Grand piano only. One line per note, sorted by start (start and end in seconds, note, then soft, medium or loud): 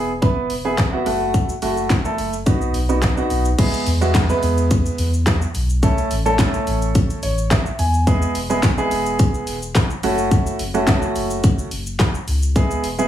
0.00 0.10 B3 medium
0.00 0.10 E4 medium
0.00 0.10 G#4 loud
0.22 0.51 B3 medium
0.22 0.52 E4 medium
0.22 0.52 B4 loud
0.65 0.84 B3 medium
0.65 0.84 E4 medium
0.65 0.84 G#4 loud
0.93 1.06 B3 medium
0.93 1.05 E4 medium
0.93 1.05 F#4 medium
1.06 1.52 A3 medium
1.06 1.52 E4 medium
1.06 1.52 F#4 loud
1.62 1.92 A3 medium
1.62 1.92 E4 medium
1.62 1.92 F#4 medium
2.05 2.34 A3 medium
2.05 2.35 E4 medium
2.05 2.35 A4 medium
2.46 2.76 B3 medium
2.46 2.76 D#4 medium
2.46 2.76 F#4 loud
2.89 3.08 B3 medium
2.89 3.08 D#4 medium
2.89 3.09 F#4 medium
3.17 3.47 B3 medium
3.17 3.47 D#4 medium
3.17 3.47 F#4 loud
3.58 3.88 G#3 medium
3.58 3.88 B3 medium
3.58 3.88 E4 medium
3.58 3.88 G#4 loud
4.01 4.20 G#3 medium
4.01 4.21 B3 medium
4.01 4.21 E4 medium
4.01 4.21 F#4 loud
4.29 5.07 G#3 medium
4.29 5.08 B3 medium
4.29 5.08 E4 medium
4.29 5.08 B4 loud
5.83 6.12 A3 medium
5.83 6.12 C#4 medium
5.83 6.12 E4 medium
5.83 6.12 A4 loud
6.25 6.35 A3 medium
6.25 6.35 C#4 medium
6.25 6.35 E4 medium
6.25 6.35 A4 loud
6.39 7.18 A3 medium
6.39 7.18 C#4 medium
6.39 7.18 E4 medium
6.39 7.18 A4 loud
7.23 7.49 C#5 medium
7.51 7.77 E5 medium
7.79 8.05 G#5 medium
8.07 8.36 G#3 medium
8.07 8.37 B3 medium
8.07 8.37 E4 medium
8.07 8.37 G#4 loud
8.50 8.69 G#3 medium
8.50 8.69 B3 medium
8.50 8.69 E4 medium
8.50 8.69 G#4 loud
8.78 9.56 G#3 medium
8.78 9.56 B3 medium
8.78 9.56 E4 medium
8.78 9.56 G#4 loud
10.03 10.59 A3 medium
10.03 10.59 C#4 medium
10.03 10.60 E4 medium
10.03 10.60 F#4 loud
10.74 10.83 A3 medium
10.74 10.84 C#4 medium
10.74 10.84 E4 medium
10.74 10.84 F#4 loud
10.87 11.66 A3 medium
10.87 11.66 C#4 medium
10.87 11.66 E4 medium
10.87 11.66 F#4 loud
12.56 12.85 G#3 medium
12.56 12.85 B3 medium
12.56 12.85 E4 medium
12.56 12.85 G#4 loud
12.98 13.08 G#3 medium
12.98 13.08 B3 medium
12.98 13.08 E4 medium
12.98 13.08 G#4 loud